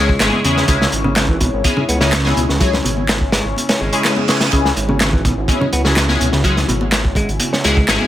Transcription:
Already playing: detuned saw bass C#2, analog synth pad C#3 C#4 E4 C#5, clean electric guitar G#3
0.09 kick
0.20 detuned saw bass G#1, synth stab G#3 C#4 E4 G#4, snare, clap, closed hi-hat
0.32 high conga
0.44 detuned saw bass E2, clean electric guitar C#3, synth stab G#3 C#4 E4 G#4, closed hi-hat
0.57 snare
0.68 detuned saw bass C#2, clean electric guitar C#3, synth stab G#3 C#4 E4 G#4, kick, closed hi-hat
0.80 clean electric guitar C#3, snare
0.92 detuned saw bass G#1, closed hi-hat
1.04 clean electric guitar C#3, high conga
1.16 clean electric guitar C#3, snare, clap, closed hi-hat
1.28 clean electric guitar E3, kick
1.40 clean electric guitar B2, kick, closed hi-hat
1.53 detuned saw bass G#1
1.64 synth stab G#3 C#4 E4 G#4, kick, closed hi-hat, high conga
1.77 clean electric guitar C#3, low conga
1.89 detuned saw bass C#2, clean electric guitar B3, closed hi-hat
2.00 clean electric guitar C#3, synth stab G#3 C#4 E4 G#4, snare
2.12 snare, clap, closed hi-hat
2.25 synth stab G#3 C#4 E4 G#4, snare, high conga
2.36 detuned saw bass C#2, clean electric guitar B2, closed hi-hat
2.49 detuned saw bass C#2, clean electric guitar C#3, snare
2.60 clean electric guitar F#3, synth stab G#3 C#4 E4 G#4, kick, closed hi-hat
2.73 snare, low conga
2.84 detuned saw bass G#1, clean electric guitar B2, closed hi-hat
2.97 high conga
3.09 snare, clap, closed hi-hat
3.21 kick
3.32 clean electric guitar G#3, snare, closed hi-hat
3.45 detuned saw bass G#1
3.56 closed hi-hat, reverse cymbal, high conga
3.69 clean electric guitar C#4, snare, closed hi-hat
3.81 detuned saw bass G#1, clean electric guitar G#3
3.93 synth stab G#3 C#4 E4 G#4, closed hi-hat
4.05 snare, clap, closed hi-hat
4.16 high conga
4.28 clean electric guitar C#3, synth stab G#3 C#4 E4 G#4, snare, closed hi-hat
4.41 snare, closed hi-hat
4.52 detuned saw bass C#2, clean electric guitar C#3, synth stab G#3 C#4 E4 G#4, analog synth pad F#4, kick, closed hi-hat
4.65 clean electric guitar C#3, snare
4.76 detuned saw bass G#1, closed hi-hat
4.89 clean electric guitar C#3, high conga
5.00 clean electric guitar C#3, snare, clap, closed hi-hat
5.13 clean electric guitar E3, kick
5.25 clean electric guitar B2, kick, closed hi-hat
5.37 detuned saw bass G#1
5.48 synth stab G#3 C#4 E4 G#4, kick, closed hi-hat, high conga
5.61 clean electric guitar C#3, low conga
5.73 detuned saw bass C#2, clean electric guitar B3, closed hi-hat
5.85 clean electric guitar C#3, synth stab G#3 C#4 E4 G#4, snare
5.96 snare, clap, closed hi-hat
6.08 synth stab G#3 C#4 E4 G#4, snare, high conga
6.20 detuned saw bass C#2, clean electric guitar B2, closed hi-hat
6.32 detuned saw bass C#2, clean electric guitar C#3, snare
6.44 clean electric guitar F#3, synth stab G#3 C#4 E4 G#4, kick, closed hi-hat
6.57 snare, low conga
6.68 detuned saw bass G#1, clean electric guitar B2, closed hi-hat
6.81 high conga
6.92 snare, clap, closed hi-hat
7.05 kick
7.15 clean electric guitar G#3, kick, closed hi-hat
7.29 detuned saw bass G#1, closed hi-hat
7.40 closed hi-hat, high conga
7.53 clean electric guitar C#4, snare
7.64 detuned saw bass C#2, synth stab G#3 C#4 E4 G#4, clean electric guitar G#3, snare, closed hi-hat
7.77 kick
7.88 detuned saw bass G#1, synth stab G#3 C#4 E4 G#4, snare, clap, closed hi-hat
8.01 high conga

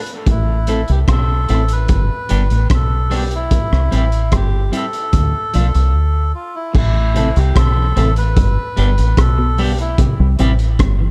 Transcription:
0.06 closed hi-hat
0.26 fingered electric bass A1, kick, closed hi-hat
0.31 melodica E4
0.67 clean electric guitar A3 C4 E4 A4, closed hi-hat
0.88 fingered electric bass C2, melodica G4, closed hi-hat
1.08 fingered electric bass B1, melodica A4, kick, cross-stick, closed hi-hat
1.49 fingered electric bass A1, clean electric guitar A3 C4 E4 A4, closed hi-hat
1.68 closed hi-hat
1.73 melodica B4
1.88 fingered electric bass G1, kick, closed hi-hat
2.29 fingered electric bass G1, clean electric guitar G3 B3 D4 G4, closed hi-hat
2.50 fingered electric bass A1, closed hi-hat
2.70 fingered electric bass B1, kick, cross-stick, closed hi-hat
2.74 melodica A4
3.10 clean electric guitar G3 B3 D4 G4, cross-stick, open hi-hat
3.16 melodica G4
3.31 closed hi-hat
3.35 melodica E4
3.51 kick, closed hi-hat
3.72 fingered electric bass C2, cross-stick
3.91 fingered electric bass A1, clean electric guitar G3 C4 E4 G4, closed hi-hat
3.96 melodica E4
4.12 closed hi-hat
4.32 fingered electric bass G1, melodica G4, kick, cross-stick, closed hi-hat
4.72 clean electric guitar G3 C4 E4 G4, closed hi-hat
4.76 melodica A4
4.93 closed hi-hat
5.13 fingered electric bass D2, kick, closed hi-hat
5.54 fingered electric bass B1, clean electric guitar F3 A3 D4 F4, closed hi-hat
5.74 fingered electric bass C2, closed hi-hat
5.95 fingered electric bass D2
6.35 melodica F4
6.55 melodica E4
6.73 fingered electric bass A1, clean electric guitar A2, melodica E4, kick, crash
7.15 clean electric guitar C3 A3 C4 E4 A4, closed hi-hat
7.36 fingered electric bass C2, melodica G4, closed hi-hat
7.55 fingered electric bass B1, clean electric guitar D3, melodica A4, kick, cross-stick, closed hi-hat
7.77 clean electric guitar E3
7.96 fingered electric bass A1, clean electric guitar C3 A3 C4 E4 A4, closed hi-hat
8.16 melodica B4, closed hi-hat
8.36 fingered electric bass G1, kick, closed hi-hat
8.77 fingered electric bass G1, clean electric guitar G3 B3 D4 G4, closed hi-hat
8.98 fingered electric bass A1, closed hi-hat
9.17 fingered electric bass B1, melodica A4, kick, cross-stick, closed hi-hat
9.38 clean electric guitar B2
9.58 clean electric guitar G2 G3 B3 D4 G4, melodica G4, open hi-hat
9.79 melodica E4, closed hi-hat
9.98 clean electric guitar C3, kick, closed hi-hat
10.20 fingered electric bass C2
10.39 fingered electric bass A1, clean electric guitar C3 G3 C4 E4 G4, closed hi-hat
10.59 closed hi-hat
10.79 fingered electric bass G1, clean electric guitar D3, kick, cross-stick, closed hi-hat
11.00 clean electric guitar E3

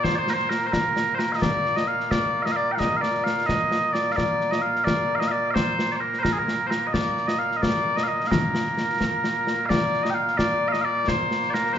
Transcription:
Already playing: bagpipes A#2 A#3
0.03 bagpipes C5, concert bass drum, snare
0.15 bagpipes C5 D5
0.28 bagpipes A#4, snare
0.33 bagpipes C5
0.39 snare
0.50 bagpipes A#4, snare
0.62 snare
0.67 bagpipes C5
0.73 bagpipes A#4, concert bass drum, snare
0.96 snare
1.15 bagpipes C5
1.19 bagpipes A#4, snare
1.32 bagpipes D#5 F5
1.42 bagpipes D5, concert bass drum, snare
1.65 snare
1.76 bagpipes D#5, snare
1.88 bagpipes F5
2.00 snare
2.11 bagpipes D5, concert bass drum, snare
2.42 bagpipes D#5 F5, snare
2.52 bagpipes F5
2.56 bagpipes D5
2.72 bagpipes F5 G5
2.79 bagpipes D#5, concert bass drum, snare
2.97 bagpipes F5
3.01 bagpipes D5, snare
3.15 snare
3.24 bagpipes F5, snare
3.38 snare
3.46 bagpipes D#5, concert bass drum, snare
3.72 snare
3.93 bagpipes D5, snare
4.12 bagpipes F5
4.16 bagpipes D5, concert bass drum, snare
4.41 snare
4.51 bagpipes D#5, snare
4.62 bagpipes F5
4.76 snare
4.84 bagpipes D5, concert bass drum, snare
5.15 bagpipes F5
5.20 bagpipes D#5, snare
5.28 bagpipes D5 F5
5.51 bagpipes C5 F5
5.56 concert bass drum, snare
5.79 snare
5.90 bagpipes D5, snare
5.96 bagpipes C5
6.01 bagpipes A#4
6.13 snare
6.19 bagpipes C5
6.23 bagpipes A#4, concert bass drum, snare
6.32 bagpipes G#4
6.38 bagpipes A#4
6.48 snare
6.67 bagpipes A#4 C5
6.71 snare
6.87 bagpipes D#5
6.93 bagpipes D5, concert bass drum, snare
7.17 snare
7.27 bagpipes D#5, snare
7.39 bagpipes F5
7.51 snare
7.56 bagpipes D#5
7.62 bagpipes D5, concert bass drum, snare
7.96 bagpipes D#5, snare
8.03 bagpipes F5
8.08 bagpipes D#5
8.20 snare
8.27 bagpipes A#4 F5
8.32 concert bass drum, snare
8.55 snare
8.66 snare
8.78 snare
8.89 snare
9.01 concert bass drum, snare
9.24 snare
9.47 snare
9.66 bagpipes D5 F5
9.70 concert bass drum, snare
9.94 snare
10.03 bagpipes D#5, snare
10.10 bagpipes G5
10.14 bagpipes F5
10.28 snare
10.37 bagpipes D5, concert bass drum, snare
10.68 bagpipes F5
10.72 bagpipes D#5, snare
10.81 bagpipes D5 F5
11.08 bagpipes C5, concert bass drum, snare
11.31 snare
11.43 snare
11.50 bagpipes D5
11.54 bagpipes A#4, snare
11.66 snare
11.73 bagpipes C5

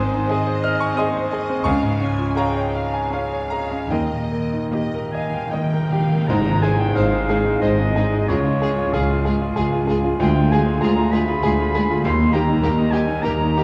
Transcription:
Already playing: double bass section G#1, cello section G#2, timpani G#2, grand piano G#2 D#3 G#5 C6 D#6, violin section C5
0.00 grand piano C4
0.14 grand piano D#4
0.30 viola section C4 G#4, grand piano G#4, violin section D#5
0.47 grand piano C5
0.64 grand piano D#5 F6
0.80 grand piano G#5 C#6
0.96 viola section C4 G#4, violin section C5 D#5, grand piano D#5 G#5 C6 D#6
1.16 grand piano C5
1.33 grand piano G#4, violin section D#5
1.50 grand piano C4
1.64 grand piano C#2 F5 G#5 C#6, double bass section C#2, cello section C#3, violin section F5
1.83 grand piano G#2
2.00 grand piano C#4, violin section G#5
2.18 grand piano F4
2.36 viola section C#4 G#4, grand piano G#4 C#5 F5 A#5, violin section F5 G5
2.56 grand piano C#5
2.75 grand piano F5, violin section F5
2.94 grand piano G#5
3.12 viola section C#4 G#4, grand piano C#5 F5 G#5, violin section F5
3.33 grand piano C#5
3.50 grand piano G#4 A#5
3.71 grand piano C#4 G#5
3.90 double bass section D#2, grand piano D#2 A#4 D#5 G5, cello section D#3, violin section D#5
4.11 grand piano A#2
4.19 timpani D#3
4.28 timpani D#3
4.32 grand piano A#3
4.53 timpani D#3, grand piano D#4
4.72 timpani D#3, viola section A#3 D#4, grand piano G4, violin section D#5
4.83 timpani D#3
4.93 timpani D#3, grand piano A#4
5.01 timpani D#3
5.11 timpani D#3, grand piano D#5, violin section F5, oboe G#5, flute G#5
5.19 timpani D#3
5.28 timpani D#3
5.34 timpani D#3, grand piano G5
5.46 timpani D#3
5.52 timpani D#3, viola section A#3 D#4, violin section D#5 G5, grand piano D#5, oboe G5, flute G5
5.63 timpani D#3
5.72 timpani D#3, grand piano A#4
5.81 timpani D#3
5.90 timpani D#3, grand piano G4, violin section F5
5.99 timpani D#3
6.07 timpani D#3
6.12 timpani D#3, grand piano A#3
6.28 double bass section G#1, timpani G#2, cello section G#2, grand piano G#2, viola section G#3, french horn section C4 G#4, violin section D#4 C5, oboe A#5, flute A#5, tam-tam
6.46 grand piano D#4
6.63 viola section G#3, violin section D#4 C5, grand piano G#4, oboe G#5, flute G#5
6.79 grand piano D#4, flute G5, oboe G5
6.95 double bass section G#1, cello section G#2, viola section G#3, violin section D#4 C5, grand piano C5, oboe F5, flute F5
7.12 grand piano D#4
7.28 viola section G#3, violin section D#4 C5, grand piano G#4
7.45 grand piano D#4
7.61 double bass section G#1, cello section G#2, viola section G#3, violin section D#4 C5, grand piano C5, oboe D#5, flute D#5
7.79 grand piano D#4
7.96 viola section G#3, violin section D#4 C5, grand piano G#4
8.12 grand piano D#4
8.28 cello section C#2, double bass section C#2, grand piano C#2, french horn section G#3 F4, viola section G#3, violin section F4 G#4, oboe C#5, flute C#5
8.45 grand piano F4
8.61 viola section G#3, violin section F4 G#4, grand piano G#4
8.78 grand piano F4
8.93 double bass section C#2, cello section C#2, viola section G#3, violin section F4 G#4, grand piano G#4, oboe F5, flute F5
9.10 grand piano F4
9.25 viola section G#3, violin section F4 G#4, grand piano G#4
9.42 grand piano F4
9.56 double bass section C#2, cello section C#2, viola section G#3, violin section F4 G#4, grand piano G#4
9.73 grand piano F4
9.87 viola section G#3, violin section F4 G#4, grand piano G#4
10.04 grand piano F4
10.20 grand piano D2, double bass section D2, cello section D2, viola section G#3, violin section F4 G#4, flute G5, oboe G5
10.36 grand piano F4
10.51 viola section G#3, violin section F4 G#4, grand piano G#4, oboe G#5, flute G#5
10.67 grand piano F4
10.81 double bass section D2, cello section D2, viola section G#3, violin section F4 G#4, grand piano G#4, oboe A#5, flute A#5
10.96 grand piano F4
11.12 viola section G#3, violin section F4 G#4, grand piano G#4, oboe B5, flute B5
11.28 grand piano F4
11.43 double bass section D2, cello section D2, viola section G#3, violin section F4 G#4, grand piano G#4
11.60 grand piano F4
11.74 viola section G#3, violin section F4 G#4, grand piano G#4
11.91 grand piano F4
12.03 double bass section D#2, cello section D#2, grand piano D#2, timpani D#3, french horn section G3 D#4, viola section A#3, violin section D#4 G4, flute C6, oboe C6
12.20 grand piano D#4
12.32 viola section A#3, violin section D#4 G4, grand piano G4, oboe A#5, flute A#5
12.49 grand piano D#4
12.61 double bass section D#2, cello section D#2, viola section A#3, violin section D#4 G4, grand piano A#4
12.78 grand piano D#4
12.91 viola section A#3, violin section D#4 G4, grand piano G4, oboe G#5, flute G#5
13.08 grand piano D#4
13.22 double bass section D#2, cello section D#2, viola section A#3, violin section D#4 G4, grand piano A#4, oboe A#5, flute A#5
13.41 grand piano D#4
13.56 viola section A#3, violin section D#4 G4, grand piano G4

